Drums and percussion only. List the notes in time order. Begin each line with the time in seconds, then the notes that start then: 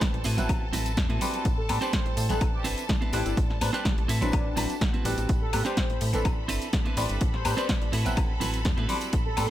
0.01 kick, snare, closed hi-hat, tambourine
0.14 closed hi-hat
0.24 open hi-hat, tambourine
0.38 closed hi-hat, tambourine, high conga, low conga
0.49 kick, closed hi-hat, tambourine, high woodblock
0.73 open hi-hat, tambourine, low conga
0.86 closed hi-hat, tambourine
0.97 kick, snare, closed hi-hat, tambourine
1.09 closed hi-hat, high conga
1.21 open hi-hat, tambourine, low conga
1.34 closed hi-hat, tambourine
1.45 kick, closed hi-hat, tambourine
1.69 open hi-hat, tambourine, high conga, high woodblock
1.81 closed hi-hat, tambourine
1.93 kick, snare, closed hi-hat
2.06 closed hi-hat
2.17 open hi-hat, tambourine
2.30 closed hi-hat, tambourine, high conga, low conga
2.41 kick, closed hi-hat, tambourine, high woodblock
2.64 open hi-hat, tambourine
2.78 closed hi-hat, tambourine
2.89 kick, snare, closed hi-hat, tambourine
3.02 closed hi-hat, high conga
3.13 open hi-hat, tambourine
3.26 closed hi-hat, tambourine
3.37 kick, closed hi-hat, tambourine
3.50 snare
3.61 open hi-hat, tambourine, high conga, high woodblock
3.74 closed hi-hat, tambourine
3.85 kick, snare, closed hi-hat, tambourine
3.98 closed hi-hat
4.09 open hi-hat, tambourine
4.21 closed hi-hat, tambourine, high conga, low conga
4.32 kick, closed hi-hat, tambourine, high woodblock
4.57 open hi-hat, tambourine, low conga, high woodblock
4.69 closed hi-hat, tambourine
4.81 kick, snare, closed hi-hat
4.94 closed hi-hat, high conga
5.05 open hi-hat, tambourine, low conga
5.18 closed hi-hat, tambourine
5.29 kick, closed hi-hat, tambourine
5.53 open hi-hat, tambourine, high conga, high woodblock
5.65 closed hi-hat, tambourine
5.77 kick, snare, closed hi-hat, tambourine
5.90 closed hi-hat
6.01 open hi-hat, tambourine
6.13 closed hi-hat, tambourine, high conga, low conga
6.25 kick, closed hi-hat, tambourine, high woodblock
6.49 open hi-hat, tambourine
6.62 closed hi-hat, tambourine
6.73 kick, snare, closed hi-hat, tambourine
6.86 closed hi-hat, high conga
6.97 open hi-hat, tambourine
7.09 closed hi-hat, tambourine
7.21 kick, closed hi-hat, tambourine
7.34 snare
7.45 open hi-hat, tambourine, high conga, high woodblock
7.58 closed hi-hat, tambourine
7.69 kick, snare, closed hi-hat, tambourine
7.82 closed hi-hat
7.93 open hi-hat, tambourine
8.06 closed hi-hat, tambourine, high conga, low conga
8.17 kick, closed hi-hat, tambourine, high woodblock
8.41 open hi-hat, tambourine, low conga
8.54 closed hi-hat, tambourine
8.65 kick, snare, closed hi-hat, tambourine
8.78 closed hi-hat, high conga
8.89 open hi-hat, tambourine, low conga
9.01 closed hi-hat, tambourine
9.13 kick, closed hi-hat, tambourine
9.37 open hi-hat, tambourine, high conga, high woodblock